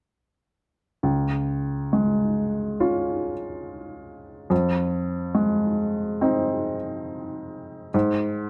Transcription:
1.03 C#2
1.93 G#3
2.80 C#4 F4
4.50 F2
5.35 G#3
6.21 C4 D#4
7.94 G#2

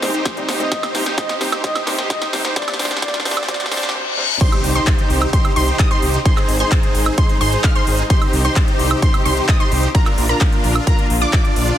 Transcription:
Already playing: G#3 C4 D#4 G4 C5, riser
0.02 G#1 C3 G3 C4 D#4 C5, snare, open hi-hat
0.14 D#4 G4 C5, closed hi-hat
0.25 kick, snare, closed hi-hat
0.36 C3 G3 C4 D#4 D5, closed hi-hat
0.48 G#1, snare, open hi-hat
0.59 C3 G3 C4 D#4 C5 D#5, closed hi-hat
0.72 C3 G4 C5 D#5, kick, snare, closed hi-hat
0.83 snare, closed hi-hat, high woodblock
0.94 C2 C3 G3 C4 D#4 C5, snare, open hi-hat
1.06 D#4 G4 C5, snare, closed hi-hat
1.18 D#4 C5 D#5, kick, snare, closed hi-hat
1.29 snare, closed hi-hat
1.40 C3 G3 C4 D#4 C5, snare, open hi-hat
1.52 D#4 G4 C5, snare, high woodblock
1.64 D#4 G4 C5 D#5, kick, snare, closed hi-hat
1.75 snare, closed hi-hat, high woodblock
1.86 C2 C3 G3 C4 D#4 C5, snare, open hi-hat
1.98 D#4 G4 C5, snare, closed hi-hat
2.10 D#4 D#5, kick, snare, closed hi-hat
2.22 snare, closed hi-hat
2.33 C2 C3 G3 C4 D#4 C5, snare, open hi-hat
2.45 D#4 G4 C5, snare, closed hi-hat
2.56 C3 F3 G3 A#3 C4 D4 C5 D5, kick, snare, closed hi-hat
2.62 snare
2.68 snare, closed hi-hat, high woodblock
2.74 snare
2.79 A#1 C3 G3 C4 D4 G4 C5 D5, snare, open hi-hat
2.85 snare
2.91 snare, closed hi-hat
2.97 snare
3.02 C3 G3 C4 D4 G4 C5 D5, kick, snare, closed hi-hat
3.08 snare
3.14 snare, closed hi-hat
3.20 snare
3.25 A#1 C3 G3 C4 D4 G4 C5 D5, snare, open hi-hat
3.31 snare
3.37 snare, high woodblock
3.43 snare
3.48 C3 G3 C4 D4 G4 C5 D5, kick, snare, closed hi-hat, reverse cymbal
3.54 snare
3.60 snare, closed hi-hat
3.66 snare
3.71 A#1 C3 G3 C4 D4 G4 C5 D5, snare, open hi-hat
3.77 snare
3.83 snare, closed hi-hat
3.89 snare
3.94 C3 G3 C4 D4 C5
4.17 C3 G3 C4 D4 C5
4.41 C3 C4 D#4 G4 C5 C6, kick, closed hi-hat, crash, impact
4.52 closed hi-hat, high woodblock
4.64 C2, open hi-hat
4.75 D#4 G4 C5 C6, closed hi-hat
4.87 kick, clap, closed hi-hat
4.99 closed hi-hat
5.10 C2, open hi-hat
5.22 closed hi-hat, high woodblock
5.33 D#4 G4 C5 C6, kick, closed hi-hat
5.45 closed hi-hat, high woodblock
5.56 C2 D#4 G4 C5 C6, open hi-hat
5.68 closed hi-hat
5.79 D#4 G4 D#6, kick, clap, closed hi-hat
5.91 D#4 G4 C5 C6, closed hi-hat
6.02 C2, open hi-hat
6.14 closed hi-hat
6.25 G#3 D#4 G#4 C5 C6, kick, closed hi-hat
6.37 clap, closed hi-hat, high woodblock
6.49 G#1, open hi-hat
6.60 D#4 G#4 C5 C6, closed hi-hat
6.72 kick, clap, closed hi-hat
6.83 closed hi-hat
6.95 G#1, open hi-hat
7.06 closed hi-hat, high woodblock
7.18 D#4 G#4 C5 C6, kick, closed hi-hat
7.29 closed hi-hat
7.41 G#1 D#4 G#4 C5 C6, open hi-hat
7.52 closed hi-hat
7.64 D#4 G#4 F5 F6, kick, clap, closed hi-hat
7.75 D#4 G#4 C5 C6, closed hi-hat
7.87 G#1, open hi-hat
7.99 closed hi-hat
8.10 C3 C4 D#4 G4 C5 C6, kick, closed hi-hat
8.22 closed hi-hat, high woodblock
8.33 C2, open hi-hat
8.45 D#4 G4 C5 C6, closed hi-hat
8.56 kick, clap, closed hi-hat
8.68 closed hi-hat
8.79 C2, open hi-hat
8.91 closed hi-hat, high woodblock
9.02 D#4 G4 C5 C6, kick, closed hi-hat
9.14 closed hi-hat, high woodblock
9.25 C2 D#4 G4 C5 C6, open hi-hat
9.37 closed hi-hat
9.49 D#4 G4 D#6, kick, clap, closed hi-hat
9.60 D#4 G4 C5 C6, closed hi-hat
9.72 C2, open hi-hat
9.83 closed hi-hat
9.95 A#3 D4 F4 A#4 A#5, kick, closed hi-hat
10.06 clap, closed hi-hat, high woodblock
10.18 A#1, open hi-hat
10.29 D4 F4 A#4 A#5, closed hi-hat
10.41 kick, clap, closed hi-hat
10.52 closed hi-hat
10.64 A#1, open hi-hat
10.75 closed hi-hat, high woodblock
10.87 D4 F4 A#4 A#5, kick, closed hi-hat
10.99 closed hi-hat
11.10 A#1, open hi-hat
11.22 D4 F4 D5 D6, closed hi-hat
11.33 D4 F4 D5 D6, kick, clap, closed hi-hat
11.45 closed hi-hat
11.56 A#1, open hi-hat
11.68 closed hi-hat

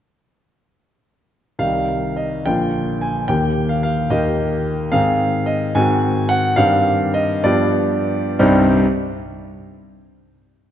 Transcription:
1.59 C2 D#3 G3 D#4 F5
2.17 D#5
2.46 A#1 D3 A#3 F4 G5
3.01 G#5
3.28 D#2 D#3 A#3 G4 G5
3.69 F5
3.83 F5
4.10 D#2 D#3 A#3 G4 D#5
4.92 G#2 D#3 C4 G#4 F5
5.46 D#5
5.75 G#2 D#3 C4 F#4 G#5
6.29 F#5
6.56 G2 D#3 C4 G4 F5
7.14 D#5
7.44 G2 F3 B3 G4 D5
8.39 C2 G2 G3 C4 D#4 G4 C5

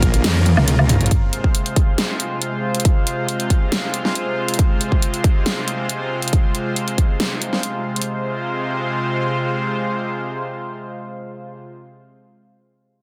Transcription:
Already playing: A#1 C#3 A#3 F4 A#4
0.02 kick, closed hi-hat
0.14 closed hi-hat
0.24 F2, snare, closed hi-hat, high tom, ride
0.35 high tom
0.46 closed hi-hat, high tom
0.57 C#2, snare, mid tom, low woodblock
0.68 closed hi-hat, mid tom, ride
0.79 mid tom, low woodblock
0.89 mid tom, open hi-hat
1.01 A#1, closed hi-hat, mid tom
1.06 closed hi-hat
1.11 C3 G#3 F4 C5, kick, closed hi-hat
1.33 closed hi-hat
1.44 kick
1.55 closed hi-hat
1.66 closed hi-hat
1.76 kick, closed hi-hat
1.98 snare, closed hi-hat
2.20 closed hi-hat
2.42 closed hi-hat
2.75 closed hi-hat
2.80 closed hi-hat
2.85 kick, closed hi-hat
3.07 closed hi-hat
3.29 closed hi-hat
3.40 closed hi-hat
3.50 kick, closed hi-hat
3.72 snare, closed hi-hat
3.94 closed hi-hat
4.05 snare
4.15 closed hi-hat
4.48 closed hi-hat
4.54 closed hi-hat
4.59 kick, closed hi-hat
4.81 closed hi-hat
4.92 kick
5.02 closed hi-hat
5.14 closed hi-hat
5.24 kick, closed hi-hat
5.46 snare, closed hi-hat
5.68 closed hi-hat
5.89 closed hi-hat
6.22 closed hi-hat
6.28 closed hi-hat
6.33 kick, closed hi-hat
6.55 closed hi-hat
6.76 closed hi-hat
6.88 closed hi-hat
6.98 kick, closed hi-hat
7.20 snare, closed hi-hat
7.42 closed hi-hat
7.53 snare
7.63 closed hi-hat
7.96 closed hi-hat
8.02 closed hi-hat
8.07 C3 G#3 F4 C5

